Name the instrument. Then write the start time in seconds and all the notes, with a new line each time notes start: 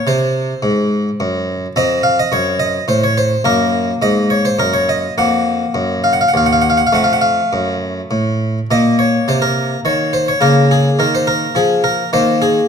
harpsichord
Already playing: C4
0.07 C3 C5
0.63 G#2
1.20 F#2
1.76 F2 C4 D#5
2.03 F5
2.19 D#5
2.32 F#2 C#5
2.59 D#5
2.88 A2 C5
3.04 C#5
3.17 C5
3.44 F#2 A#3 A#4
4.02 G#2 D#5
4.30 C#5
4.45 C5
4.59 F#2 A#4
4.73 C#5
4.89 D#5
5.18 F2 A#3 F#5
5.75 F#2
6.04 F5
6.13 F#5
6.21 F5
6.28 F#5
6.34 D#2 F5
6.46 F#5
6.53 F5
6.62 F#5
6.70 F5
6.77 F#5
6.87 F5
6.93 F2 A3 F#5
7.04 F5
7.13 F#5
7.21 F5
7.53 F#2
8.11 A2
8.71 A#2 A#3 D#5
8.99 C#5
9.28 C3 C5
9.42 A#4
9.85 D#3 C#5
10.13 C5
10.28 C#5
10.41 C#3 A#3 A#4
10.71 G#4
10.99 D#3 A#4
11.15 C5
11.27 A#4
11.55 F3 G#4
11.84 A#4
12.13 D#3 A#3 C5
12.42 G#4